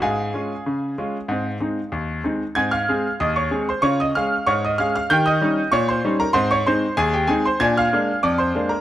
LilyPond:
\new Staff \with { instrumentName = "Grand piano" } { \time 2/4 \key aes \mixolydian \tempo 4 = 95 << { <aes' f'' aes''>2~ | <aes' f'' aes''>4 r4 | \key aes \major <aes'' aes'''>16 <f'' f'''>8. <ees'' ees'''>16 <des'' des'''>8 <c'' c'''>16 | <des'' des'''>16 <ees'' ees'''>16 <f'' f'''>8 <des'' des'''>16 <ees'' ees'''>16 <f'' f'''>16 <f'' f'''>16 |
<g'' g'''>16 <ees'' ees'''>8. <des'' des'''>16 <c'' c'''>8 <bes' bes''>16 | <c'' c'''>16 <des'' des'''>16 <c'' c'''>8 <aes' aes''>16 <g' g''>16 <aes' aes''>16 <c'' c'''>16 | <aes'' aes'''>16 <f'' f'''>8. <d'' d'''>16 <c'' c'''>8 <bes' bes''>16 | } \\ { aes,8 <aes des' f'>8 des8 <aes des' f'>8 | <aes, c'>8 <aes c' ees'>8 ees,8 <aes c' ees'>8 | <aes, c'>8 <aes c' aes'>8 ees,8 <aes c' aes'>8 | <des f'>8 <aes des' aes'>8 aes,8 <aes des' aes'>8 |
<ees g'>8 <g des' ees'>8 bes,8 <g des' ees'>8 | <aes, c'>8 <aes c' ees'>8 ees,8 <aes c' ees'>8 | <bes, d'>8 <aes bes d'>8 f,8 <aes bes d'>8 | } >> }